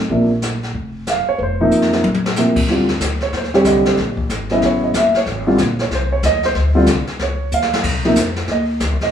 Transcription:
0.10 0.71 A#1 medium
0.10 0.28 C3 soft
0.10 0.29 F3 soft
0.10 0.29 A#3 soft
0.10 0.29 D4 medium
0.10 brush sweep soft
0.10 kick soft
0.42 snare medium
0.42 hi-hat pedal medium
0.63 snare soft
0.74 1.23 F1 medium
0.74 brush sweep soft
0.74 kick soft
1.07 1.28 F5 medium
1.07 snare soft
1.07 hi-hat pedal soft
1.28 1.40 C#5 medium
1.28 muted upright bass stroke soft
1.38 1.69 F1 medium
1.38 1.40 B4 soft
1.38 brush sweep soft
1.38 kick soft
1.43 1.54 C5 medium
1.61 2.02 C3 medium
1.61 2.02 F3 medium
1.61 2.02 A#3 medium
1.61 2.02 D#4 medium
1.71 2.02 F2 medium
1.71 hi-hat pedal soft
1.82 snare soft
1.93 snare soft
2.04 2.65 A#1 medium
2.04 high tom medium
2.14 high tom medium
2.26 snare medium
2.36 2.55 C3 medium
2.36 2.55 F3 soft
2.36 2.55 A#3 soft
2.36 2.55 C4 medium
2.36 snare soft
2.36 hi-hat pedal medium
2.56 kick medium
2.56 crash medium
2.68 2.99 D#2 medium
2.68 2.87 D3 medium
2.68 2.87 G3 soft
2.68 2.88 C4 medium
2.68 2.88 F4 medium
2.68 brush sweep soft
2.68 kick soft
2.68 snare soft
2.89 snare soft
3.00 3.32 D2 medium
3.00 kick soft
3.00 snare medium
3.00 hi-hat pedal soft
3.21 3.33 C#5 medium
3.21 snare soft
3.33 3.64 D#2 medium
3.33 brush sweep soft
3.33 kick soft
3.33 snare soft
3.37 3.54 C5 medium
3.44 snare soft
3.54 3.95 D3 medium
3.54 3.95 G3 medium
3.54 3.96 C4 medium
3.54 3.96 G4 medium
3.54 3.66 C#5 medium
3.54 snare soft
3.64 3.96 C2 medium
3.64 3.86 D#5 medium
3.64 kick soft
3.64 snare medium
3.64 hi-hat pedal soft
3.85 3.98 C5 medium
3.85 snare medium
3.97 4.28 A#1 medium
3.97 brush sweep soft
3.97 kick soft
3.97 snare soft
4.17 kick medium
4.29 4.61 G#1 medium
4.29 kick soft
4.29 snare medium
4.29 hi-hat pedal medium
4.49 4.92 C#3 medium
4.49 4.92 F#3 medium
4.49 4.93 B3 medium
4.49 4.93 E4 medium
4.49 4.62 D#5 medium
4.49 snare soft
4.62 4.93 A1 medium
4.62 4.83 C#5 medium
4.62 brush sweep soft
4.62 kick soft
4.62 snare soft
4.84 4.95 D#5 medium
4.94 5.25 F#1 medium
4.94 5.15 E5 medium
4.94 kick soft
4.94 snare medium
4.94 hi-hat pedal medium
5.14 5.27 C#5 medium
5.14 snare soft
5.26 5.58 G#1 medium
5.26 brush sweep soft
5.26 kick soft
5.26 snare soft
5.47 5.58 D3 medium
5.47 5.58 G3 medium
5.47 5.58 C4 medium
5.47 5.58 F4 medium
5.58 5.90 A#1 medium
5.58 kick soft
5.58 snare medium
5.58 hi-hat pedal soft
5.79 5.92 C#5 medium
5.79 snare soft
5.91 6.22 C2 medium
5.91 brush sweep soft
5.91 kick soft
5.91 snare soft
5.95 6.12 C5 medium
6.12 6.23 C#5 medium
6.23 6.54 D#2 medium
6.23 6.44 D#5 medium
6.23 kick soft
6.23 snare medium
6.23 hi-hat pedal medium
6.43 6.52 C5 medium
6.43 snare soft
6.55 6.87 D2 medium
6.55 brush sweep soft
6.55 kick soft
6.55 snare soft
6.75 6.86 D3 medium
6.75 6.86 G3 medium
6.75 6.87 C4 medium
6.75 6.87 F4 medium
6.86 7.06 C2 medium
6.86 kick soft
6.86 snare medium
6.86 hi-hat pedal medium
7.07 muted upright bass stroke soft
7.07 snare soft
7.19 7.51 C#2 medium
7.19 7.51 C#5 medium
7.19 brush sweep soft
7.19 kick soft
7.19 snare soft
7.52 7.83 D#2 medium
7.52 7.73 F5 medium
7.52 hi-hat pedal medium
7.62 snare medium
7.73 snare medium
7.84 8.15 C2 medium
7.84 brush sweep soft
7.84 kick medium
7.84 snare soft
7.84 crash medium
8.04 8.16 C3 medium
8.04 8.16 F3 medium
8.04 8.16 A#3 medium
8.04 8.16 D#4 medium
8.04 snare soft
8.16 8.47 F2 medium
8.16 8.48 C5 soft
8.16 kick soft
8.16 snare medium
8.16 hi-hat pedal soft
8.36 snare soft
8.48 8.80 D#2 medium
8.48 brush sweep soft
8.48 kick soft
8.48 snare soft
8.52 8.63 D#5 medium
8.80 8.92 D2 medium
8.80 kick soft
8.80 snare medium
8.80 hi-hat pedal medium
8.92 9.01 C2 medium
9.01 9.11 A#1 medium
9.01 9.11 D#5 medium
9.01 snare soft

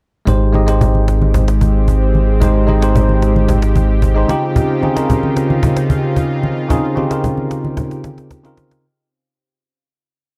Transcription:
0.25 4.25 G#1 medium
0.25 0.48 G#3 medium
0.25 4.25 G#3 medium
0.25 8.80 C4 medium
0.25 0.49 D#4 medium
0.25 8.81 G4 medium
0.25 0.49 G4 medium
0.25 0.50 C5 medium
0.25 cajon bass loud
0.25 low conga medium
0.41 cajon slap soft
0.53 0.64 G#3 medium
0.53 0.65 D#4 medium
0.53 0.65 G4 medium
0.53 0.66 D#5 loud
0.53 cajon slap soft
0.53 high conga medium
0.67 1.53 G#3 medium
0.67 1.53 D#4 medium
0.67 1.54 G4 medium
0.67 1.54 C5 medium
0.67 cajon slap loud
0.81 cajon bass medium
0.81 low conga medium
0.95 high conga medium
1.08 cajon slap medium
1.22 cajon slap soft
1.22 high conga medium
1.34 cajon bass loud
1.34 low conga medium
1.48 cajon slap loud
1.61 cajon bass medium
1.61 high conga medium
1.75 cajon slap soft
1.88 cajon bass medium
2.02 cajon slap soft
2.15 cajon slap soft
2.15 high conga medium
2.29 cajon slap soft
2.40 2.63 G#3 medium
2.40 2.63 D#4 medium
2.40 2.64 G4 medium
2.40 2.64 C5 medium
2.40 cajon bass loud
2.40 low conga medium
2.56 cajon slap soft
2.67 2.79 G#3 medium
2.67 2.79 D#4 medium
2.67 2.80 G4 medium
2.67 2.80 D#5 medium
2.67 cajon slap soft
2.67 high conga medium
2.81 3.67 G#3 medium
2.81 3.68 D#4 medium
2.81 3.68 G4 medium
2.81 3.69 C5 medium
2.81 cajon slap loud
2.95 cajon bass loud
2.95 low conga medium
3.09 high conga medium
3.22 cajon slap medium
3.36 cajon slap soft
3.36 high conga medium
3.49 cajon bass loud
3.49 low conga medium
3.62 cajon slap loud
3.76 cajon bass medium
3.76 high conga medium
3.89 cajon slap soft
4.02 cajon bass medium
4.15 4.28 G#3 medium
4.15 4.28 D#4 medium
4.15 4.29 G4 medium
4.15 4.30 C5 loud
4.28 4.72 C#3 medium
4.28 8.80 C#3 medium
4.28 4.72 C4 medium
4.28 8.80 D#4 medium
4.28 4.72 D#4 medium
4.28 8.80 F4 medium
4.28 4.73 F4 medium
4.28 4.73 G4 loud
4.28 cajon slap loud
4.28 high conga medium
4.43 cajon slap soft
4.56 cajon bass loud
4.56 low conga medium
4.81 4.93 C#3 medium
4.81 4.94 C4 medium
4.81 4.94 D#4 medium
4.81 4.94 F4 medium
4.81 4.95 G#4 medium
4.81 cajon slap soft
4.81 high conga medium
4.95 5.82 C#3 medium
4.95 5.82 C4 medium
4.95 5.82 D#4 medium
4.95 5.83 F4 medium
4.95 5.83 A#4 medium
4.95 cajon slap medium
5.09 cajon bass loud
5.09 low conga medium
5.23 high conga medium
5.37 cajon slap medium
5.50 cajon slap soft
5.50 high conga medium
5.63 cajon bass loud
5.63 low conga medium
5.77 cajon slap loud
5.90 cajon bass medium
5.90 high conga medium
6.16 cajon bass medium
6.31 cajon slap soft
6.43 cajon slap soft
6.43 high conga medium
6.57 cajon slap soft
6.69 6.91 C#3 medium
6.69 6.91 C4 medium
6.69 6.92 D#4 medium
6.69 6.92 F4 medium
6.69 6.93 G#4 loud
6.69 cajon bass loud
6.69 low conga medium
6.84 cajon slap soft
6.95 7.07 C#3 medium
6.95 7.08 C4 medium
6.95 7.08 D#4 medium
6.95 7.08 F4 medium
6.95 7.09 G4 medium
6.95 cajon slap soft
6.95 high conga medium
7.09 7.96 C#3 medium
7.09 7.96 C4 medium
7.09 7.96 D#4 medium
7.09 7.97 F4 medium
7.09 7.97 A#4 medium
7.09 cajon slap loud
7.24 cajon bass medium
7.24 low conga medium
7.38 cajon slap soft
7.38 high conga medium
7.51 cajon slap medium
7.64 cajon slap soft
7.64 high conga medium
7.77 cajon bass loud
7.77 cajon slap medium
7.77 low conga medium
7.91 cajon slap medium
8.04 cajon slap medium
8.04 high conga medium
8.18 cajon slap medium
8.31 cajon bass medium
8.31 cajon slap medium
8.43 8.76 C#3 medium
8.43 8.76 C4 medium
8.43 8.77 D#4 medium
8.43 8.77 F4 medium
8.43 8.78 A#4 loud
8.43 cajon slap medium
8.57 cajon slap loud
8.57 high conga medium
8.71 cajon slap loud

